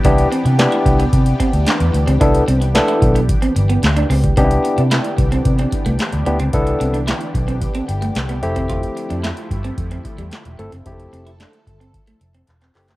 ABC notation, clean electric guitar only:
X:1
M:4/4
L:1/16
Q:1/4=111
K:C
V:1 name="Clean electric guitar"
D z C z2 E z B, z2 C z D z2 C | D z C z2 E z B, z C z B, z D C z | C z2 D E z2 C z C z A, z2 B, C | z2 C D E z2 C z C z A, z B, z C |
F z2 D E z2 C z C z G, z2 A, C | z2 C E D z2 C z A, z C z C z A, |]